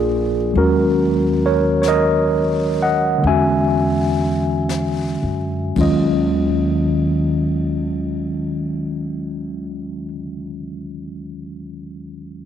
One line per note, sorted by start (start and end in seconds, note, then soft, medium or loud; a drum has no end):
0.00 0.50 A#1 medium
0.00 0.54 F3 soft
0.00 0.55 A#3 soft
0.00 0.55 D4 soft
0.00 0.52 F4 medium
0.00 0.59 G#4 medium
0.53 3.19 D#2 medium
0.53 3.22 F#3 soft
0.53 3.21 G#3 soft
0.53 3.24 C#4 soft
0.53 brush sweep soft
0.57 1.40 F#4 medium
0.57 1.45 A#4 medium
1.46 1.78 A#4 medium
1.46 1.78 C#5 medium
1.82 1.85 C#5 medium
1.82 brush sweep soft
1.82 snare soft
1.82 hi-hat pedal soft
1.88 2.75 A#4 medium
1.88 2.75 D#5 medium
2.82 3.22 D#5 medium
2.82 3.26 F#5 medium
3.18 5.76 D3 soft
3.18 5.77 G#3 soft
3.18 brush sweep soft
3.24 5.19 E2 medium
3.24 5.77 C#4 soft
3.24 5.76 E5 medium
3.24 5.76 G#5 medium
3.29 5.81 F#4 soft
4.69 brush sweep soft
4.69 snare soft
4.69 hi-hat pedal soft
5.23 5.74 F#2 soft
5.75 10.10 D#2 soft
5.75 10.07 D#2 medium
5.75 10.11 D#3 soft
5.75 10.12 F#3 soft
5.75 10.13 G#3 soft
5.75 10.13 C#4 soft
5.75 10.14 F4 medium
5.75 kick soft
5.75 ride soft
5.81 10.12 D#5 medium